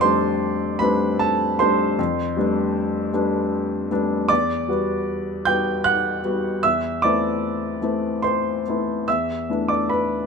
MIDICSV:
0, 0, Header, 1, 2, 480
1, 0, Start_track
1, 0, Tempo, 777202
1, 1225, Time_signature, 3, 2, 24, 8
1, 4573, Tempo, 832178
1, 6222, End_track
2, 0, Start_track
2, 0, Title_t, "Grand piano"
2, 0, Program_c, 0, 0
2, 0, Control_c, 0, 64, 127
2, 0, Note_on_c, 0, 41, 53
2, 0, Note_on_c, 0, 74, 67
2, 0, Note_on_c, 0, 86, 85
2, 6, Note_on_c, 0, 84, 86
2, 11, Note_on_c, 0, 72, 59
2, 13, Note_on_c, 0, 55, 38
2, 21, Note_on_c, 0, 57, 40
2, 21, Note_on_c, 0, 60, 41
2, 23, Note_on_c, 0, 62, 42
2, 472, Note_off_c, 0, 72, 0
2, 473, Note_off_c, 0, 55, 0
2, 477, Note_off_c, 0, 57, 0
2, 477, Note_off_c, 0, 60, 0
2, 478, Note_off_c, 0, 62, 0
2, 488, Note_on_c, 0, 83, 84
2, 494, Note_off_c, 0, 84, 0
2, 496, Note_on_c, 0, 71, 59
2, 499, Note_on_c, 0, 55, 39
2, 504, Note_on_c, 0, 57, 37
2, 508, Note_on_c, 0, 60, 39
2, 508, Note_on_c, 0, 62, 43
2, 721, Note_off_c, 0, 71, 0
2, 734, Note_off_c, 0, 83, 0
2, 738, Note_on_c, 0, 81, 81
2, 743, Note_on_c, 0, 69, 59
2, 960, Note_off_c, 0, 55, 0
2, 962, Note_off_c, 0, 57, 0
2, 964, Note_off_c, 0, 60, 0
2, 964, Note_off_c, 0, 62, 0
2, 968, Note_off_c, 0, 69, 0
2, 983, Note_off_c, 0, 81, 0
2, 983, Note_on_c, 0, 84, 81
2, 988, Note_on_c, 0, 55, 41
2, 989, Note_on_c, 0, 72, 64
2, 991, Note_on_c, 0, 57, 42
2, 993, Note_on_c, 0, 60, 42
2, 997, Note_on_c, 0, 62, 43
2, 1204, Note_off_c, 0, 55, 0
2, 1205, Note_off_c, 0, 57, 0
2, 1206, Note_off_c, 0, 60, 0
2, 1208, Note_off_c, 0, 62, 0
2, 1226, Note_off_c, 0, 41, 0
2, 1226, Note_on_c, 0, 41, 55
2, 1234, Control_c, 0, 64, 0
2, 1236, Note_off_c, 0, 74, 0
2, 1238, Note_off_c, 0, 86, 0
2, 1343, Control_c, 0, 64, 127
2, 1454, Note_off_c, 0, 41, 0
2, 1461, Note_on_c, 0, 55, 39
2, 1469, Note_on_c, 0, 57, 38
2, 1470, Note_on_c, 0, 62, 42
2, 1471, Note_on_c, 0, 59, 38
2, 1909, Note_off_c, 0, 55, 0
2, 1913, Note_off_c, 0, 57, 0
2, 1914, Note_off_c, 0, 59, 0
2, 1914, Note_off_c, 0, 62, 0
2, 1934, Note_on_c, 0, 55, 38
2, 1937, Note_on_c, 0, 57, 36
2, 1940, Note_on_c, 0, 59, 39
2, 1944, Note_on_c, 0, 62, 43
2, 2389, Note_off_c, 0, 55, 0
2, 2390, Note_off_c, 0, 57, 0
2, 2391, Note_off_c, 0, 72, 0
2, 2392, Note_off_c, 0, 59, 0
2, 2394, Note_off_c, 0, 62, 0
2, 2412, Note_on_c, 0, 55, 40
2, 2413, Note_off_c, 0, 84, 0
2, 2416, Note_on_c, 0, 57, 39
2, 2418, Note_on_c, 0, 59, 40
2, 2422, Note_on_c, 0, 62, 45
2, 2629, Note_off_c, 0, 55, 0
2, 2631, Note_off_c, 0, 57, 0
2, 2633, Note_off_c, 0, 59, 0
2, 2635, Note_off_c, 0, 62, 0
2, 2646, Note_on_c, 0, 86, 90
2, 2653, Note_on_c, 0, 74, 70
2, 2656, Note_on_c, 0, 40, 55
2, 2664, Control_c, 0, 64, 0
2, 2767, Control_c, 0, 64, 127
2, 2889, Note_off_c, 0, 40, 0
2, 2892, Note_on_c, 0, 55, 39
2, 2896, Note_on_c, 0, 66, 43
2, 2898, Note_on_c, 0, 59, 41
2, 3346, Note_off_c, 0, 55, 0
2, 3346, Note_off_c, 0, 74, 0
2, 3348, Note_off_c, 0, 66, 0
2, 3349, Note_off_c, 0, 59, 0
2, 3368, Note_off_c, 0, 86, 0
2, 3369, Note_on_c, 0, 91, 87
2, 3376, Note_on_c, 0, 79, 62
2, 3377, Note_on_c, 0, 55, 35
2, 3383, Note_on_c, 0, 59, 39
2, 3384, Note_on_c, 0, 66, 40
2, 3593, Note_off_c, 0, 79, 0
2, 3606, Note_off_c, 0, 91, 0
2, 3609, Note_on_c, 0, 90, 90
2, 3616, Note_on_c, 0, 78, 64
2, 3825, Note_off_c, 0, 55, 0
2, 3828, Note_off_c, 0, 59, 0
2, 3828, Note_off_c, 0, 66, 0
2, 3856, Note_on_c, 0, 55, 39
2, 3859, Note_on_c, 0, 59, 38
2, 3862, Note_on_c, 0, 66, 41
2, 4070, Note_off_c, 0, 78, 0
2, 4071, Note_off_c, 0, 55, 0
2, 4073, Note_off_c, 0, 59, 0
2, 4074, Note_off_c, 0, 66, 0
2, 4091, Note_off_c, 0, 90, 0
2, 4094, Note_on_c, 0, 88, 86
2, 4098, Note_on_c, 0, 76, 66
2, 4099, Note_on_c, 0, 40, 51
2, 4101, Control_c, 0, 64, 0
2, 4192, Control_c, 0, 64, 127
2, 4320, Note_off_c, 0, 76, 0
2, 4331, Note_off_c, 0, 40, 0
2, 4336, Note_off_c, 0, 88, 0
2, 4337, Note_on_c, 0, 86, 80
2, 4346, Note_on_c, 0, 74, 60
2, 4349, Note_on_c, 0, 57, 37
2, 4349, Note_on_c, 0, 60, 35
2, 4352, Note_on_c, 0, 59, 37
2, 4353, Note_on_c, 0, 64, 39
2, 4790, Note_off_c, 0, 57, 0
2, 4791, Note_off_c, 0, 60, 0
2, 4792, Note_off_c, 0, 59, 0
2, 4792, Note_off_c, 0, 64, 0
2, 4813, Note_on_c, 0, 57, 35
2, 4817, Note_on_c, 0, 59, 35
2, 4819, Note_on_c, 0, 60, 35
2, 4820, Note_on_c, 0, 64, 37
2, 5029, Note_off_c, 0, 74, 0
2, 5046, Note_on_c, 0, 84, 74
2, 5048, Note_off_c, 0, 86, 0
2, 5056, Note_on_c, 0, 72, 52
2, 5272, Note_off_c, 0, 57, 0
2, 5274, Note_off_c, 0, 59, 0
2, 5275, Note_off_c, 0, 60, 0
2, 5275, Note_off_c, 0, 64, 0
2, 5310, Note_on_c, 0, 57, 32
2, 5315, Note_on_c, 0, 59, 33
2, 5317, Note_on_c, 0, 60, 35
2, 5317, Note_on_c, 0, 64, 37
2, 5512, Note_off_c, 0, 72, 0
2, 5517, Note_off_c, 0, 57, 0
2, 5520, Note_off_c, 0, 59, 0
2, 5521, Note_off_c, 0, 60, 0
2, 5521, Note_off_c, 0, 64, 0
2, 5530, Note_off_c, 0, 84, 0
2, 5538, Note_on_c, 0, 88, 77
2, 5541, Control_c, 0, 64, 0
2, 5544, Note_on_c, 0, 76, 61
2, 5547, Note_on_c, 0, 40, 47
2, 5650, Control_c, 0, 64, 127
2, 5766, Note_off_c, 0, 40, 0
2, 5779, Note_on_c, 0, 57, 31
2, 5781, Note_on_c, 0, 59, 30
2, 5784, Note_on_c, 0, 62, 30
2, 5787, Note_on_c, 0, 64, 35
2, 5867, Note_off_c, 0, 76, 0
2, 5888, Note_off_c, 0, 88, 0
2, 5888, Note_on_c, 0, 86, 62
2, 5893, Note_on_c, 0, 74, 45
2, 6002, Note_off_c, 0, 74, 0
2, 6008, Note_off_c, 0, 86, 0
2, 6009, Note_on_c, 0, 83, 67
2, 6014, Note_on_c, 0, 71, 49
2, 6222, Note_off_c, 0, 57, 0
2, 6222, Note_off_c, 0, 59, 0
2, 6222, Note_off_c, 0, 62, 0
2, 6222, Note_off_c, 0, 64, 0
2, 6222, Note_off_c, 0, 71, 0
2, 6222, Note_off_c, 0, 83, 0
2, 6222, End_track
0, 0, End_of_file